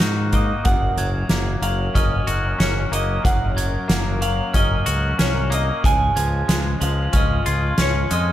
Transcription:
0.00 0.51 G#2 medium
0.00 0.62 D#3 medium
0.00 0.66 D#3 medium
0.00 0.32 A#3 medium
0.00 0.63 A#3 soft
0.00 0.65 D#4 medium
0.00 0.63 F#4 medium
0.00 2.27 F#4 medium
0.00 0.33 F#6 medium
0.00 snare loud
0.00 closed hi-hat medium
0.33 1.30 A#3 medium
0.33 0.65 D#5 medium
0.33 0.66 D#6 medium
0.33 kick medium
0.33 closed hi-hat medium
0.65 0.91 F#1 medium
0.65 2.27 F#2 medium
0.65 5.81 F#3 medium
0.65 5.80 C#4 medium
0.65 5.80 A#4 medium
0.65 1.62 F#5 medium
0.65 kick loud
0.65 closed hi-hat medium
0.97 1.23 F#1 medium
0.97 1.61 F#3 medium
0.97 1.63 G#6 medium
0.97 closed hi-hat medium
1.29 1.55 F#1 medium
1.29 2.91 A#3 medium
1.29 snare loud
1.29 closed hi-hat medium
1.62 1.87 F#1 medium
1.62 3.25 F#3 medium
1.62 1.95 F5 medium
1.62 1.95 F#7 medium
1.62 closed hi-hat medium
1.94 2.20 F#1 medium
1.94 2.58 C#4 medium
1.94 2.62 D#5 medium
1.94 2.28 F6 medium
1.94 kick medium
1.94 closed hi-hat medium
2.27 2.53 F#1 medium
2.27 3.89 F#4 medium
2.27 2.92 F#6 medium
2.27 closed hi-hat medium
2.59 2.85 F#1 medium
2.59 4.53 C#4 medium
2.59 2.90 C#5 medium
2.59 snare loud
2.59 closed hi-hat medium
2.91 3.17 F#1 medium
2.91 3.87 A#3 medium
2.91 3.25 D#5 medium
2.91 3.25 D#6 medium
2.91 closed hi-hat medium
3.24 3.75 F#1 medium
3.24 4.87 F#2 medium
3.24 4.18 F#5 medium
3.24 kick loud
3.24 closed hi-hat medium
3.57 4.20 F#3 medium
3.57 4.22 G#6 medium
3.57 closed hi-hat medium
3.88 4.40 F#1 medium
3.88 5.49 A#3 medium
3.88 snare loud
3.88 closed hi-hat medium
4.21 5.84 F#3 medium
4.21 4.55 F5 medium
4.21 4.54 F#7 medium
4.21 closed hi-hat medium
4.53 4.80 F#1 medium
4.53 5.17 C#4 medium
4.53 5.22 D#5 medium
4.53 4.86 F6 medium
4.53 kick medium
4.53 closed hi-hat medium
4.86 5.12 C#2 medium
4.86 5.84 F#4 medium
4.86 5.51 F#6 medium
4.86 closed hi-hat medium
5.19 5.70 C2 medium
5.19 5.84 C#4 medium
5.19 5.54 C#5 medium
5.19 snare loud
5.19 closed hi-hat loud
5.50 5.83 A#3 medium
5.50 5.85 D#5 medium
5.50 5.84 D#6 medium
5.50 closed hi-hat medium
5.81 6.10 C#2 medium
5.81 8.32 C#3 medium
5.81 7.46 C#3 medium
5.81 8.32 G#3 medium
5.81 8.32 F4 medium
5.81 kick loud
5.85 6.82 G#5 loud
5.85 closed hi-hat medium
6.16 6.42 C#2 medium
6.16 6.79 F3 medium
6.16 6.81 G#6 medium
6.16 closed hi-hat medium
6.48 6.74 C#2 medium
6.48 8.10 G#3 medium
6.48 snare loud
6.48 closed hi-hat medium
6.81 7.07 C#2 medium
6.81 8.32 F3 medium
6.81 7.16 F5 medium
6.81 7.14 F#7 medium
6.81 closed hi-hat medium
7.13 7.39 C#2 medium
7.13 7.77 C#4 medium
7.13 7.82 D#5 medium
7.13 7.46 F6 medium
7.13 kick medium
7.13 closed hi-hat medium
7.46 7.72 C#2 medium
7.46 8.32 F4 medium
7.46 8.11 G#6 medium
7.46 closed hi-hat medium
7.78 8.04 C#2 medium
7.78 8.32 C#4 medium
7.78 8.10 C#5 medium
7.78 snare loud
7.78 closed hi-hat medium
8.11 8.32 F2 medium
8.11 8.32 G#3 medium
8.11 8.32 D#5 medium
8.11 8.32 F6 medium
8.11 closed hi-hat medium

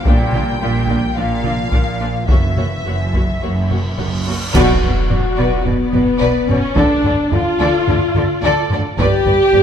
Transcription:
0.05 0.53 A#1 medium
0.05 0.54 A#2 medium
0.05 1.14 G3 medium
0.05 0.15 A#3 medium
0.05 0.15 D4 medium
0.05 0.15 F4 medium
0.05 0.15 D5 medium
0.05 1.15 G5 medium
0.05 taiko medium
0.33 0.42 A#3 medium
0.33 0.42 D4 medium
0.33 0.43 F4 medium
0.33 0.43 D5 soft
0.33 taiko mid soft
0.61 1.10 A#1 medium
0.61 1.09 A#2 medium
0.61 0.70 A#3 soft
0.61 0.70 D4 medium
0.61 0.69 F4 medium
0.61 0.69 D5 soft
0.88 0.98 A#3 medium
0.88 0.98 D4 medium
0.88 0.97 F4 soft
0.88 0.98 D5 soft
0.88 taiko medium
1.15 1.65 A#1 medium
1.15 1.64 A#2 medium
1.15 2.26 F3 medium
1.15 1.25 A#3 medium
1.15 1.25 D4 medium
1.15 1.25 F4 medium
1.15 1.25 D5 medium
1.15 2.28 F5 loud
1.44 1.53 A#3 soft
1.44 1.53 D4 soft
1.44 1.53 F4 soft
1.44 1.53 D5 soft
1.44 taiko mid soft
1.71 2.21 A#1 medium
1.71 2.21 A#2 medium
1.71 1.81 A#3 soft
1.71 1.81 D4 medium
1.71 1.79 F4 soft
1.71 1.80 D5 medium
1.71 taiko medium
2.00 2.08 A#3 medium
2.00 2.08 D4 medium
2.00 2.08 F4 soft
2.00 2.09 D5 soft
2.28 2.78 F#1 medium
2.28 2.78 F#2 medium
2.28 4.27 E3 medium
2.28 2.37 A#3 medium
2.28 2.36 F#4 medium
2.28 2.38 F#4 medium
2.28 2.38 C#5 medium
2.28 4.23 E5 medium
2.28 taiko medium
2.28 cymbal swell medium
2.57 2.65 A#3 soft
2.57 2.66 F#4 soft
2.57 2.66 C#5 soft
2.57 taiko mid soft
2.84 3.35 F#1 medium
2.84 3.35 F#2 medium
2.84 2.94 A#3 soft
2.84 2.94 F#4 soft
2.84 2.95 C#5 soft
3.14 3.22 A#3 soft
3.14 3.22 F#4 soft
3.14 3.23 C#5 soft
3.14 taiko medium
3.42 3.92 F#1 medium
3.42 3.92 F#2 medium
3.42 3.50 A#3 soft
3.42 3.50 F#4 soft
3.42 3.51 F#4 soft
3.42 3.51 C#5 medium
3.70 3.79 A#3 soft
3.70 3.79 F#4 soft
3.70 3.78 C#5 soft
3.70 taiko mid soft
3.98 4.49 F#1 medium
3.98 4.48 F#2 medium
3.98 4.07 A#3 soft
3.98 4.07 F#4 soft
3.98 4.06 C#5 soft
3.98 taiko medium
4.27 4.36 A#3 medium
4.27 4.35 F#4 soft
4.27 4.36 F#4 soft
4.27 4.35 C#5 soft
4.53 4.81 B1 loud
4.53 5.34 B2 medium
4.53 4.81 B2 loud
4.53 5.62 F#4 loud
4.53 4.80 B4 medium
4.53 4.80 D5 medium
4.53 8.95 D5 medium
4.53 concert bass drum medium
4.53 taiko loud
4.53 crash medium
4.53 impact medium
4.82 4.90 B1 medium
4.82 4.91 B2 medium
4.82 4.90 B4 medium
4.82 4.90 D5 soft
4.82 taiko low-mid medium
5.09 5.18 B1 medium
5.09 5.19 B2 medium
5.09 5.17 B4 soft
5.09 5.17 D5 medium
5.09 taiko low-mid medium
5.37 5.46 B1 medium
5.37 5.46 B2 medium
5.37 5.63 B4 medium
5.37 5.63 D5 medium
5.64 5.73 B1 medium
5.64 5.74 B2 medium
5.64 6.49 B3 medium
5.64 5.73 B4 medium
5.64 5.72 D5 soft
5.64 taiko low-mid medium
5.92 6.00 B1 medium
5.92 6.02 B2 medium
5.92 6.01 B4 medium
5.92 6.01 D5 medium
5.92 taiko low-mid medium
6.20 6.29 B1 medium
6.20 6.30 B2 medium
6.20 6.47 B4 medium
6.20 6.47 D5 medium
6.48 6.56 B1 medium
6.48 6.57 B2 medium
6.48 6.77 C#4 medium
6.48 6.57 B4 medium
6.48 6.57 D5 medium
6.48 taiko low-mid medium
6.75 6.83 D2 medium
6.75 6.85 D3 medium
6.75 7.31 D4 loud
6.75 7.33 D4 medium
6.75 7.03 A4 medium
6.75 7.03 D5 medium
6.75 taiko loud
7.03 7.11 D2 medium
7.03 7.13 D3 medium
7.03 7.12 A4 medium
7.03 7.13 D5 medium
7.03 taiko low-mid medium
7.32 7.40 D2 medium
7.32 7.40 D3 medium
7.32 8.71 F4 loud
7.32 8.68 F4 medium
7.32 7.41 A4 medium
7.32 7.41 D5 medium
7.32 taiko low-mid medium
7.59 7.67 D2 medium
7.59 7.69 D3 medium
7.59 7.86 A4 medium
7.59 7.86 D5 medium
7.87 7.96 D2 medium
7.87 7.96 D3 medium
7.87 7.96 A4 medium
7.87 7.96 D5 medium
7.87 taiko low-mid medium
8.15 8.23 D2 medium
8.15 8.24 D3 medium
8.15 8.24 A4 medium
8.15 8.24 D5 medium
8.15 taiko low-mid soft
8.42 8.50 D2 medium
8.42 8.52 D3 medium
8.42 8.69 A4 medium
8.42 8.69 D5 medium
8.70 8.78 D2 medium
8.70 8.80 D3 medium
8.70 8.81 A4 medium
8.70 8.81 D5 medium
8.70 taiko low-mid medium
8.98 9.06 G1 medium
8.98 9.07 G2 medium
8.98 9.63 G4 loud
8.98 9.25 B4 medium
8.98 9.25 D5 medium
8.98 9.63 D5 medium
8.98 taiko loud
9.25 9.33 G1 medium
9.25 9.35 G2 medium
9.25 9.35 B4 medium
9.25 9.34 D5 medium
9.25 taiko low-mid soft
9.53 9.61 G1 medium
9.53 9.62 G2 medium
9.53 9.62 B4 medium
9.53 9.62 D5 medium
9.53 taiko low-mid medium

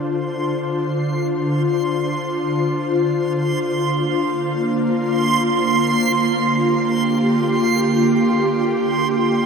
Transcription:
0.00 3.18 D3 medium
0.00 5.89 D4 medium
0.00 9.46 F4 medium
0.00 5.94 C5 medium
0.00 9.46 C6 medium
3.19 9.46 D3 medium
3.72 9.46 A#3 medium
6.27 9.46 G4 medium

